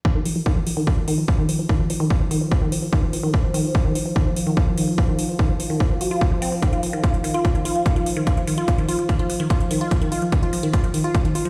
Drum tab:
HH |--o---o---o---o-|--o---o---o---o-|--o---o---o---o-|--o---o---o---o-|
BD |o---o---o---o---|o---o---o---o---|o---o---o---o---|o---o---o---o---|

HH |xxoxxxoxxxoxxxox|xxoxxxoxxxoxxxox|xxoxxxoxxxoxxxox|
BD |o---o---o---o---|o---o---o---o---|o---o---o---o---|